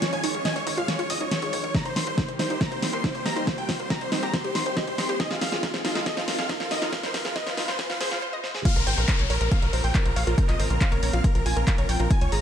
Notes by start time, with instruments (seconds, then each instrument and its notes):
Already playing: supersaw synth D#3 F3 G#3 C#4 F4, riser
0.02 synth arpeggio sound F4, grand piano C#5, supersaw synth C#5, snare, closed hi-hat
0.13 analog synth bass C#2, synth arpeggio sound C#5, grand piano G#5, supersaw synth G#5, closed hi-hat
0.24 analog synth bass G#1, synth arpeggio sound D#4, grand piano C#5, supersaw synth C#5, open hi-hat
0.34 analog synth bass C#2, synth arpeggio sound G#4, grand piano C#5, supersaw synth C#5, closed hi-hat
0.45 synth arpeggio sound D#5, supersaw synth G#5, grand piano G#5, snare, closed hi-hat
0.56 analog synth bass C#2, synth arpeggio sound C#5, supersaw synth C#5, grand piano C#5, closed hi-hat
0.67 analog synth bass C#2, synth arpeggio sound D#4, supersaw synth C#5, grand piano C#5, open hi-hat
0.77 analog synth bass C#2, synth arpeggio sound F4, supersaw synth F5, grand piano F5, closed hi-hat
0.88 supersaw synth C#5, grand piano C#5, synth arpeggio sound G#5, snare, closed hi-hat
0.99 analog synth bass C#2, synth arpeggio sound F4, supersaw synth C#5, grand piano C#5, closed hi-hat
1.10 analog synth bass C#2, synth arpeggio sound C#5, grand piano D#5, supersaw synth D#5, open hi-hat
1.21 analog synth bass C#2, synth arpeggio sound D#4, grand piano C#5, supersaw synth C#5, closed hi-hat
1.31 synth arpeggio sound G#4, supersaw synth C#5, grand piano C#5, snare, closed hi-hat
1.42 analog synth bass C#2, synth arpeggio sound G#4, grand piano C#5, supersaw synth C#5, closed hi-hat
1.53 analog synth bass C#2, synth arpeggio sound C#5, supersaw synth C#5, grand piano C#5, open hi-hat
1.64 analog synth bass C#2, grand piano C#5, supersaw synth C#5, synth arpeggio sound C#5, closed hi-hat
1.74 supersaw synth D#3 G3 A#3 C4 G4 A#5, synth arpeggio sound D#4, grand piano A#5, kick, snare, closed hi-hat
1.85 analog synth bass C2, grand piano C5, supersaw synth C5, synth arpeggio sound A#5, closed hi-hat
1.96 analog synth bass A#1, synth arpeggio sound D#4, grand piano C6, supersaw synth C6, snare, open hi-hat
2.07 analog synth bass C2, synth arpeggio sound A#4, grand piano C5, supersaw synth C5, closed hi-hat
2.18 synth arpeggio sound D#4, grand piano C5, supersaw synth C5, kick, snare, closed hi-hat
2.29 analog synth bass C2, synth arpeggio sound C5, closed hi-hat
2.39 analog synth bass C2, synth arpeggio sound D#4, grand piano C5, supersaw synth C5, snare, open hi-hat
2.50 analog synth bass C2, synth arpeggio sound D#4, supersaw synth C5, grand piano C5, closed hi-hat
2.61 synth arpeggio sound D#4, supersaw synth A#5, grand piano A#5, kick, snare, closed hi-hat
2.72 analog synth bass C2, supersaw synth C5, grand piano C5, synth arpeggio sound C5, closed hi-hat
2.82 analog synth bass C2, synth arpeggio sound D#4, supersaw synth C5, grand piano C5, snare, open hi-hat
2.93 analog synth bass C2, synth arpeggio sound A#4, supersaw synth C6, grand piano C6, closed hi-hat
3.04 synth arpeggio sound D#4, supersaw synth C5, grand piano C5, kick, snare, closed hi-hat
3.15 analog synth bass C2, supersaw synth C5, synth arpeggio sound C5, grand piano C5, closed hi-hat
3.26 analog synth bass C2, synth arpeggio sound D#4, supersaw synth A#5, grand piano A#5, snare, open hi-hat
3.36 analog synth bass C2, synth arpeggio sound D#4, supersaw synth C5, grand piano C5, closed hi-hat
3.47 synth arpeggio sound G4, supersaw synth C5, grand piano C5, kick, snare, closed hi-hat
3.58 analog synth bass C2, synth arpeggio sound C5, supersaw synth G5, grand piano G5, closed hi-hat
3.69 analog synth bass A#1, synth arpeggio sound D#4, supersaw synth C5, grand piano C5, kick, snare, open hi-hat
3.79 analog synth bass C2, synth arpeggio sound A#4, supersaw synth C5, grand piano C5, closed hi-hat
3.90 synth arpeggio sound D#5, supersaw synth A#5, grand piano A#5, kick, snare, closed hi-hat
4.01 analog synth bass C2, synth arpeggio sound C5, grand piano C5, supersaw synth C5, closed hi-hat
4.12 analog synth bass C2, synth arpeggio sound D#4, grand piano C5, supersaw synth C5, snare, open hi-hat
4.23 analog synth bass C2, synth arpeggio sound G4, grand piano A#5, supersaw synth A#5, closed hi-hat
4.33 supersaw synth C5, grand piano C5, synth arpeggio sound A#5, kick, snare, closed hi-hat
4.44 analog synth bass C2, synth arpeggio sound G4, grand piano C5, supersaw synth C5, closed hi-hat
4.55 analog synth bass C2, synth arpeggio sound D#4, supersaw synth C6, grand piano C6, snare, open hi-hat
4.66 analog synth bass C2, supersaw synth C5, synth arpeggio sound C5, grand piano C5, closed hi-hat
4.77 supersaw synth C5, synth arpeggio sound D#5, kick, snare, closed hi-hat
4.87 analog synth bass C2, grand piano C5, synth arpeggio sound C5, supersaw synth C5, closed hi-hat
4.98 analog synth bass C2, synth arpeggio sound D#4, grand piano C6, supersaw synth C6, snare, open hi-hat
5.09 analog synth bass C2, synth arpeggio sound G4, grand piano C5, supersaw synth C5, closed hi-hat
5.20 supersaw synth D#3 F3 G#3 C4 F4 D#5, synth arpeggio sound D#4, grand piano D#5, kick, snare, closed hi-hat
5.31 analog synth bass F1, grand piano F4, supersaw synth F4, synth arpeggio sound G#5, snare, closed hi-hat
5.41 synth arpeggio sound D#4, grand piano F5, supersaw synth F5, snare, open hi-hat
5.52 analog synth bass F1, grand piano F4, supersaw synth F4, synth arpeggio sound G#4, snare, closed hi-hat
5.63 synth arpeggio sound D#4, grand piano F4, supersaw synth F4, kick, snare, closed hi-hat
5.74 analog synth bass F1, synth arpeggio sound C5, snare, closed hi-hat
5.85 synth arpeggio sound D#4, supersaw synth F4, grand piano F4, snare, open hi-hat
5.95 analog synth bass F1, synth arpeggio sound D#4, grand piano F4, supersaw synth F4, snare, closed hi-hat
6.06 synth arpeggio sound D#4, supersaw synth D#5, grand piano D#5, kick, snare, closed hi-hat
6.17 analog synth bass F1, grand piano F4, supersaw synth F4, synth arpeggio sound C5, snare, closed hi-hat
6.28 analog synth bass F1, synth arpeggio sound D#4, supersaw synth F4, grand piano F4, snare, open hi-hat
6.39 analog synth bass F1, synth arpeggio sound G#4, grand piano F5, supersaw synth F5, snare, closed hi-hat
6.49 synth arpeggio sound D#4, grand piano F4, supersaw synth F4, kick, snare, closed hi-hat
6.60 grand piano F4, supersaw synth F4, synth arpeggio sound C5, snare, closed hi-hat
6.71 analog synth bass F1, synth arpeggio sound D#4, supersaw synth D#5, grand piano D#5, snare, open hi-hat
6.82 synth arpeggio sound D#4, supersaw synth F4, grand piano F4, snare, closed hi-hat
6.93 synth arpeggio sound F4, grand piano F4, supersaw synth F4, kick, snare, closed hi-hat
7.03 analog synth bass F1, synth arpeggio sound C5, supersaw synth C5, grand piano C5, snare, closed hi-hat
7.14 synth arpeggio sound D#4, grand piano F4, supersaw synth F4, kick, snare, open hi-hat
7.25 grand piano F4, supersaw synth F4, synth arpeggio sound G#4, snare, closed hi-hat
7.36 grand piano D#5, synth arpeggio sound D#5, supersaw synth D#5, kick, snare, closed hi-hat
7.47 grand piano F4, supersaw synth F4, synth arpeggio sound C5, snare, closed hi-hat
7.57 synth arpeggio sound D#4, grand piano F4, supersaw synth F4, snare, open hi-hat
7.68 analog synth bass F1, synth arpeggio sound F4, grand piano C5, supersaw synth C5, snare, closed hi-hat
7.79 grand piano F4, supersaw synth F4, synth arpeggio sound G#5, kick, snare, closed hi-hat
7.90 synth arpeggio sound F4, grand piano F4, supersaw synth F4, snare, closed hi-hat
8.00 synth arpeggio sound G#4, grand piano C5, supersaw synth C5, snare, open hi-hat
8.11 grand piano F4, supersaw synth F4, synth arpeggio sound F5, snare, closed hi-hat
8.22 synth arpeggio sound C5
8.33 synth arpeggio sound D#5
8.44 synth arpeggio sound C5, snare
8.54 synth arpeggio sound G#4, snare
8.65 supersaw synth C#3 F3 A#3 C4 F4 F5, synth arpeggio sound F4, grand piano F5, kick, closed hi-hat, crash, downlifter
8.76 analog synth bass A#1, grand piano A#4, supersaw synth A#4, synth arpeggio sound C6, closed hi-hat
8.87 analog synth bass G#1, synth arpeggio sound C5, grand piano G5, supersaw synth G5, open hi-hat
8.98 analog synth bass A#1, grand piano A#4, supersaw synth A#4, synth arpeggio sound C6, closed hi-hat
9.08 grand piano A#4, supersaw synth A#4, synth arpeggio sound C5, kick, clap, closed hi-hat
9.19 analog synth bass A#1, synth arpeggio sound C#5, closed hi-hat
9.30 analog synth bass A#1, grand piano A#4, supersaw synth A#4, synth arpeggio sound C#5, open hi-hat
9.41 analog synth bass A#1, synth arpeggio sound A#4, grand piano A#4, supersaw synth A#4, closed hi-hat
9.52 synth arpeggio sound C5, grand piano F5, supersaw synth F5, kick, closed hi-hat
9.62 analog synth bass A#1, grand piano A#4, supersaw synth A#4, synth arpeggio sound C#5, closed hi-hat
9.73 analog synth bass A#1, grand piano A#4, supersaw synth A#4, synth arpeggio sound C5, open hi-hat
9.84 analog synth bass A#1, grand piano G5, supersaw synth G5, synth arpeggio sound C6, open hi-hat
9.95 grand piano A#4, supersaw synth A#4, synth arpeggio sound C5, kick, clap, closed hi-hat
10.05 analog synth bass A#1, synth arpeggio sound F4, grand piano A#4, supersaw synth A#4, closed hi-hat
10.16 analog synth bass A#1, synth arpeggio sound C#5, grand piano F5, supersaw synth F5, open hi-hat
10.27 analog synth bass A#1, synth arpeggio sound F4, grand piano A#4, supersaw synth A#4, closed hi-hat
10.38 supersaw synth A#4, synth arpeggio sound C5, kick, closed hi-hat
10.49 analog synth bass A#1, synth arpeggio sound F4, grand piano D#5, supersaw synth D#5, clap, closed hi-hat
10.59 analog synth bass G#1, grand piano A#4, supersaw synth A#4, synth arpeggio sound C5, open hi-hat
10.70 analog synth bass A#1, grand piano A#4, supersaw synth A#4, synth arpeggio sound C6, closed hi-hat
10.81 synth arpeggio sound C5, grand piano F5, supersaw synth F5, kick, clap, closed hi-hat
10.92 analog synth bass A#1, grand piano A#4, supersaw synth A#4, synth arpeggio sound C#5, closed hi-hat
11.03 analog synth bass A#1, grand piano A#4, supersaw synth A#4, synth arpeggio sound C#5, open hi-hat
11.13 analog synth bass A#1, synth arpeggio sound F4, grand piano F5, supersaw synth F5, closed hi-hat
11.24 grand piano A#4, supersaw synth A#4, synth arpeggio sound C5, kick, closed hi-hat
11.35 analog synth bass A#1, synth arpeggio sound F4, grand piano A#4, supersaw synth A#4, closed hi-hat
11.46 analog synth bass A#1, synth arpeggio sound F4, grand piano G#5, supersaw synth G#5, open hi-hat
11.57 analog synth bass A#1, grand piano A#4, supersaw synth A#4, synth arpeggio sound C6
11.67 supersaw synth A#4, synth arpeggio sound F5, kick, clap, closed hi-hat
11.78 analog synth bass A#1, grand piano A#4, supersaw synth A#4, synth arpeggio sound C#5, closed hi-hat
11.89 analog synth bass A#1, synth arpeggio sound C#5, grand piano G5, supersaw synth G5, open hi-hat
12.00 analog synth bass A#1, synth arpeggio sound F4, grand piano A#4, supersaw synth A#4, closed hi-hat
12.11 supersaw synth D#3 G#3 C#4 G#5, synth arpeggio sound D#4, grand piano G#5, kick, closed hi-hat
12.21 analog synth bass C#2, grand piano C#5, supersaw synth C#5, synth arpeggio sound G#5, closed hi-hat
12.32 analog synth bass G#1, synth arpeggio sound G#4, grand piano A#5, supersaw synth A#5, open hi-hat